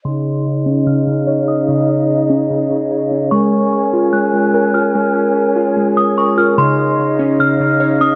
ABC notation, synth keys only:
X:1
M:4/4
L:1/8
Q:1/4=147
K:Db
V:1 name="Synth keys"
D,3 D D, D, d D | D,3 D D, D, d D | A,3 F A, A, B F | A,3 F A, A, B F |
D,3 D D, D, d D |]